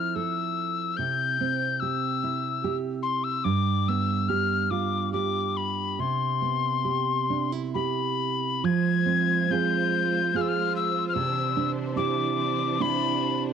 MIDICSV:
0, 0, Header, 1, 4, 480
1, 0, Start_track
1, 0, Key_signature, 0, "major"
1, 0, Tempo, 825309
1, 572, Time_signature, 3, 2, 24, 8
1, 2492, Tempo, 851064
1, 3932, Tempo, 886263
1, 5372, Tempo, 827586
1, 7711, End_track
2, 0, Start_track
2, 0, Title_t, "Tin whistle"
2, 0, Program_c, 0, 75
2, 0, Note_on_c, 0, 89, 69
2, 90, Note_on_c, 0, 88, 73
2, 99, Note_off_c, 0, 89, 0
2, 563, Note_on_c, 0, 91, 89
2, 572, Note_off_c, 0, 88, 0
2, 1047, Note_on_c, 0, 88, 77
2, 1055, Note_off_c, 0, 91, 0
2, 1612, Note_off_c, 0, 88, 0
2, 1761, Note_on_c, 0, 84, 76
2, 1884, Note_on_c, 0, 88, 77
2, 1892, Note_off_c, 0, 84, 0
2, 2003, Note_on_c, 0, 86, 88
2, 2011, Note_off_c, 0, 88, 0
2, 2259, Note_on_c, 0, 88, 80
2, 2268, Note_off_c, 0, 86, 0
2, 2492, Note_on_c, 0, 89, 78
2, 2500, Note_off_c, 0, 88, 0
2, 2729, Note_on_c, 0, 86, 73
2, 2738, Note_off_c, 0, 89, 0
2, 2964, Note_off_c, 0, 86, 0
2, 2967, Note_on_c, 0, 86, 79
2, 3216, Note_on_c, 0, 83, 70
2, 3224, Note_off_c, 0, 86, 0
2, 3459, Note_on_c, 0, 84, 73
2, 3467, Note_off_c, 0, 83, 0
2, 4296, Note_off_c, 0, 84, 0
2, 4422, Note_on_c, 0, 83, 65
2, 4911, Note_on_c, 0, 92, 85
2, 4920, Note_off_c, 0, 83, 0
2, 5381, Note_on_c, 0, 91, 81
2, 5389, Note_off_c, 0, 92, 0
2, 5874, Note_on_c, 0, 89, 75
2, 5882, Note_off_c, 0, 91, 0
2, 5903, Note_on_c, 0, 88, 65
2, 5912, Note_off_c, 0, 89, 0
2, 5944, Note_on_c, 0, 89, 79
2, 5953, Note_off_c, 0, 88, 0
2, 6100, Note_off_c, 0, 89, 0
2, 6106, Note_on_c, 0, 88, 82
2, 6284, Note_off_c, 0, 88, 0
2, 6295, Note_on_c, 0, 89, 64
2, 6323, Note_on_c, 0, 88, 90
2, 6332, Note_off_c, 0, 89, 0
2, 6653, Note_off_c, 0, 88, 0
2, 6805, Note_on_c, 0, 86, 88
2, 7296, Note_on_c, 0, 83, 86
2, 7305, Note_off_c, 0, 86, 0
2, 7654, Note_off_c, 0, 83, 0
2, 7711, End_track
3, 0, Start_track
3, 0, Title_t, "Nylon-string guitar"
3, 0, Program_c, 1, 24
3, 0, Note_on_c, 1, 53, 57
3, 0, Note_on_c, 1, 60, 44
3, 0, Note_on_c, 1, 64, 47
3, 0, Note_on_c, 1, 69, 46
3, 85, Note_off_c, 1, 69, 0
3, 92, Note_on_c, 1, 69, 52
3, 572, Note_off_c, 1, 53, 0
3, 573, Note_on_c, 1, 48, 60
3, 619, Note_off_c, 1, 69, 0
3, 815, Note_off_c, 1, 60, 0
3, 818, Note_on_c, 1, 60, 46
3, 1060, Note_on_c, 1, 67, 51
3, 1298, Note_off_c, 1, 64, 0
3, 1300, Note_on_c, 1, 64, 51
3, 1534, Note_off_c, 1, 67, 0
3, 1537, Note_on_c, 1, 67, 58
3, 2003, Note_off_c, 1, 48, 0
3, 2006, Note_on_c, 1, 43, 69
3, 2055, Note_off_c, 1, 60, 0
3, 2056, Note_off_c, 1, 64, 0
3, 2260, Note_on_c, 1, 59, 54
3, 2496, Note_off_c, 1, 67, 0
3, 2498, Note_on_c, 1, 67, 56
3, 2732, Note_on_c, 1, 65, 54
3, 2971, Note_off_c, 1, 67, 0
3, 2974, Note_on_c, 1, 67, 56
3, 3447, Note_off_c, 1, 43, 0
3, 3453, Note_on_c, 1, 48, 59
3, 3494, Note_off_c, 1, 65, 0
3, 3693, Note_off_c, 1, 59, 0
3, 3695, Note_on_c, 1, 59, 48
3, 3934, Note_off_c, 1, 67, 0
3, 3936, Note_on_c, 1, 67, 46
3, 4182, Note_on_c, 1, 62, 44
3, 4302, Note_off_c, 1, 62, 0
3, 4302, Note_on_c, 1, 64, 35
3, 4419, Note_off_c, 1, 67, 0
3, 4427, Note_on_c, 1, 67, 50
3, 4902, Note_off_c, 1, 48, 0
3, 4906, Note_on_c, 1, 53, 60
3, 4949, Note_off_c, 1, 64, 0
3, 4950, Note_off_c, 1, 59, 0
3, 4950, Note_off_c, 1, 67, 0
3, 5135, Note_on_c, 1, 60, 47
3, 5373, Note_off_c, 1, 60, 0
3, 5375, Note_on_c, 1, 60, 51
3, 5379, Note_on_c, 1, 65, 45
3, 5385, Note_on_c, 1, 68, 55
3, 5859, Note_off_c, 1, 60, 0
3, 5860, Note_off_c, 1, 65, 0
3, 5862, Note_on_c, 1, 60, 54
3, 5864, Note_off_c, 1, 68, 0
3, 5867, Note_on_c, 1, 65, 54
3, 5871, Note_on_c, 1, 68, 58
3, 6335, Note_off_c, 1, 53, 0
3, 6335, Note_on_c, 1, 48, 70
3, 6380, Note_off_c, 1, 65, 0
3, 6383, Note_off_c, 1, 68, 0
3, 6571, Note_off_c, 1, 60, 0
3, 6573, Note_on_c, 1, 62, 54
3, 6798, Note_off_c, 1, 62, 0
3, 6801, Note_on_c, 1, 62, 52
3, 6807, Note_on_c, 1, 64, 53
3, 6809, Note_on_c, 1, 67, 58
3, 7285, Note_off_c, 1, 64, 0
3, 7286, Note_off_c, 1, 67, 0
3, 7287, Note_off_c, 1, 62, 0
3, 7289, Note_on_c, 1, 62, 59
3, 7291, Note_on_c, 1, 64, 58
3, 7294, Note_on_c, 1, 67, 60
3, 7711, Note_off_c, 1, 48, 0
3, 7711, Note_off_c, 1, 62, 0
3, 7711, Note_off_c, 1, 64, 0
3, 7711, Note_off_c, 1, 67, 0
3, 7711, End_track
4, 0, Start_track
4, 0, Title_t, "String section"
4, 0, Program_c, 2, 48
4, 4907, Note_on_c, 2, 56, 58
4, 4909, Note_on_c, 2, 65, 57
4, 4910, Note_on_c, 2, 72, 69
4, 6321, Note_off_c, 2, 56, 0
4, 6322, Note_off_c, 2, 65, 0
4, 6329, Note_on_c, 2, 52, 63
4, 6334, Note_on_c, 2, 62, 61
4, 7711, Note_off_c, 2, 52, 0
4, 7711, Note_off_c, 2, 62, 0
4, 7711, Note_off_c, 2, 72, 0
4, 7711, End_track
0, 0, End_of_file